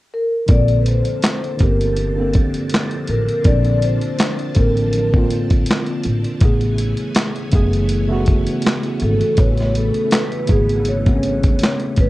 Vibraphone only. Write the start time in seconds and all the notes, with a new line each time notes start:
0.14 A#4
0.51 D5
0.81 B4
0.88 C5
1.62 A#4
3.10 A#4
3.47 D5
3.84 C5
4.59 A#4
9.03 A4
9.39 C#5
9.77 A4
10.13 B4
10.52 G#4
10.89 C#5
12.01 B4